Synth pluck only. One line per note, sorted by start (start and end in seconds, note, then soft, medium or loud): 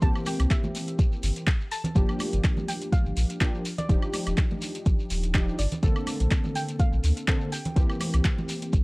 0.02 0.13 A5 loud
0.27 0.52 G5 loud
0.51 0.96 E5 medium
1.72 2.71 A5 loud
2.68 2.79 G5 loud
2.92 3.81 F5 loud
3.78 5.57 D5 loud
5.59 6.51 D5 loud
6.55 6.78 G5 loud
6.80 7.48 F5 loud
7.52 8.84 G5 medium